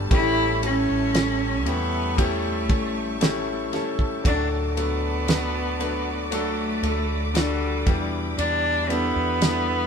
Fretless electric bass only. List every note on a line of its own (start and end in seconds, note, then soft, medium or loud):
0.11 0.85 A1 loud
0.89 1.67 A1 medium
1.67 2.69 E2 medium
2.69 3.69 A1 medium
4.25 6.80 D2 medium
6.83 7.83 D2 loud
7.87 8.35 E2 medium
8.38 9.12 E2 medium
9.16 9.87 E2 loud